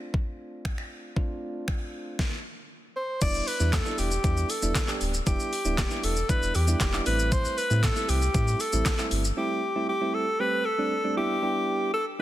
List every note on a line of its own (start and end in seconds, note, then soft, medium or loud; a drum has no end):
0.00 1.12 A3 medium
0.00 1.12 C4 medium
0.00 1.13 D4 medium
0.00 1.13 F4 medium
0.14 kick loud
0.65 finger snap loud
0.65 kick loud
0.78 finger snap medium
1.16 2.17 A3 medium
1.16 2.17 C4 medium
1.16 2.17 D4 medium
1.16 2.17 F4 medium
1.16 kick loud
1.68 finger snap loud
1.68 kick loud
2.19 kick loud
2.19 snare medium
2.96 3.20 C5 loud
3.21 3.42 E1 loud
3.21 3.46 G3 medium
3.21 3.46 B3 medium
3.21 3.46 D4 medium
3.21 3.46 E4 medium
3.21 3.49 D5 loud
3.21 kick loud
3.21 closed hi-hat medium
3.21 crash loud
3.21 shaker medium
3.34 shaker medium
3.47 3.74 B4 loud
3.47 open hi-hat medium
3.47 shaker soft
3.60 3.80 E2 loud
3.60 3.76 G3 medium
3.60 3.76 B3 medium
3.60 3.76 D4 medium
3.60 3.76 E4 medium
3.60 shaker medium
3.73 4.00 A4 loud
3.73 kick loud
3.73 snare medium
3.73 clap loud
3.73 closed hi-hat medium
3.73 shaker medium
3.85 4.10 G3 medium
3.85 4.10 B3 medium
3.85 4.10 D4 medium
3.85 4.10 E4 medium
3.85 shaker medium
3.98 4.19 E1 loud
3.98 4.51 G4 medium
3.98 open hi-hat medium
3.98 shaker medium
4.11 shaker medium
4.24 4.44 E2 loud
4.24 4.48 G3 medium
4.24 4.48 B3 medium
4.24 4.48 D4 medium
4.24 4.48 E4 medium
4.24 kick loud
4.24 closed hi-hat medium
4.24 shaker medium
4.37 shaker medium
4.50 5.01 A4 medium
4.50 open hi-hat medium
4.50 shaker medium
4.62 4.73 E1 loud
4.62 4.78 G3 medium
4.62 4.79 B3 medium
4.62 4.79 D4 medium
4.62 4.79 E4 medium
4.62 shaker medium
4.75 kick loud
4.75 snare medium
4.75 clap loud
4.75 closed hi-hat medium
4.75 shaker medium
4.87 5.12 G3 medium
4.87 5.12 B3 medium
4.87 5.12 D4 medium
4.87 5.12 G4 medium
4.87 clap medium
4.87 shaker medium
5.01 5.21 D1 medium
5.01 open hi-hat medium
5.01 shaker medium
5.14 shaker medium
5.26 5.37 E1 loud
5.26 5.51 G3 medium
5.26 5.51 B3 medium
5.26 5.51 D4 medium
5.26 5.51 E4 medium
5.26 6.06 G4 loud
5.26 kick loud
5.26 closed hi-hat medium
5.26 shaker medium
5.40 shaker medium
5.53 open hi-hat medium
5.53 shaker soft
5.65 5.85 D1 medium
5.65 5.81 G3 medium
5.65 5.81 B3 medium
5.65 5.81 D4 medium
5.65 5.81 E4 medium
5.65 shaker medium
5.78 kick loud
5.78 snare medium
5.78 clap loud
5.78 closed hi-hat medium
5.78 shaker medium
5.90 6.15 G3 medium
5.90 6.15 B3 medium
5.90 6.15 D4 medium
5.90 6.15 E4 medium
5.90 shaker medium
6.03 6.24 E1 loud
6.03 6.31 A4 medium
6.03 open hi-hat medium
6.03 shaker medium
6.16 shaker medium
6.29 6.53 G3 medium
6.29 6.53 B3 medium
6.29 6.53 D4 medium
6.29 6.53 E4 medium
6.29 6.57 B4 loud
6.29 kick loud
6.29 closed hi-hat medium
6.29 shaker medium
6.42 6.52 E1 loud
6.42 shaker medium
6.55 6.75 E2 loud
6.55 7.06 G4 loud
6.55 open hi-hat medium
6.55 shaker medium
6.67 6.84 G3 medium
6.67 6.84 B3 medium
6.67 6.84 D4 medium
6.67 6.84 E4 medium
6.67 shaker medium
6.80 7.01 E1 loud
6.80 kick loud
6.80 snare medium
6.80 clap loud
6.80 closed hi-hat loud
6.80 shaker loud
6.93 7.05 G3 medium
6.93 7.06 B3 medium
6.93 7.06 D4 medium
6.93 7.05 E4 medium
6.93 clap medium
6.93 shaker medium
7.06 7.47 A1 loud
7.06 7.57 G3 medium
7.06 7.57 A3 medium
7.06 7.58 C4 medium
7.06 7.58 E4 medium
7.06 7.34 B4 loud
7.06 open hi-hat medium
7.06 shaker medium
7.19 shaker medium
7.32 7.59 C5 loud
7.32 kick loud
7.32 closed hi-hat medium
7.32 shaker medium
7.45 shaker medium
7.58 7.85 B4 loud
7.58 open hi-hat medium
7.58 shaker soft
7.70 7.90 A2 loud
7.70 7.86 G3 medium
7.70 7.86 A3 medium
7.70 7.86 C4 medium
7.70 7.86 E4 medium
7.70 shaker medium
7.83 8.10 A4 loud
7.83 kick loud
7.83 snare medium
7.83 clap loud
7.83 closed hi-hat medium
7.83 shaker medium
7.96 8.20 G3 medium
7.96 8.20 A3 medium
7.96 8.20 C4 medium
7.96 8.20 E4 medium
7.96 shaker medium
8.09 8.29 C2 medium
8.09 8.62 G4 loud
8.09 open hi-hat medium
8.09 shaker medium
8.22 shaker medium
8.34 8.55 A2 loud
8.34 8.58 G3 medium
8.34 8.59 A3 medium
8.34 8.59 C4 medium
8.34 8.59 E4 medium
8.34 kick loud
8.34 closed hi-hat medium
8.34 shaker medium
8.48 shaker medium
8.60 9.12 A4 medium
8.60 open hi-hat medium
8.60 shaker medium
8.73 8.83 A1 medium
8.73 8.89 G3 medium
8.73 8.89 A3 medium
8.73 8.89 C4 medium
8.73 8.89 E4 medium
8.73 shaker medium
8.86 kick loud
8.86 snare medium
8.86 clap loud
8.86 closed hi-hat medium
8.86 shaker medium
8.98 9.23 G3 medium
8.98 9.23 A3 medium
8.98 9.23 C4 medium
8.98 9.23 E4 medium
8.98 clap medium
8.98 shaker medium
9.11 9.32 G1 medium
9.11 open hi-hat medium
9.11 shaker medium
9.24 shaker medium
9.37 9.61 G3 medium
9.37 9.61 A3 medium
9.37 9.61 C4 medium
9.37 9.61 E4 medium
9.37 9.85 G4 loud
9.75 9.92 G3 medium
9.75 9.92 A3 medium
9.75 9.92 C4 medium
9.75 9.92 E4 medium
9.89 10.16 G4 loud
10.01 10.25 G3 medium
10.01 10.25 A3 medium
10.01 10.25 C4 medium
10.01 10.25 E4 medium
10.14 10.41 A4 loud
10.40 10.64 G3 medium
10.40 10.64 A3 medium
10.40 10.64 C4 medium
10.40 10.64 G4 medium
10.40 10.67 B4 loud
10.65 11.17 A4 loud
10.78 10.94 G3 medium
10.78 10.94 A3 medium
10.78 10.94 C4 medium
10.78 10.94 D4 medium
11.04 11.15 G3 medium
11.04 11.17 A3 medium
11.04 11.17 C4 medium
11.04 11.16 D4 medium
11.16 11.37 G3 medium
11.16 11.37 B3 medium
11.16 11.37 D4 medium
11.16 11.37 E4 loud
11.16 11.90 G4 loud
11.42 11.90 G3 medium
11.42 11.91 B3 medium
11.42 11.91 D4 medium
11.42 11.91 E4 medium
11.42 11.91 G4 medium
11.94 12.05 A4 loud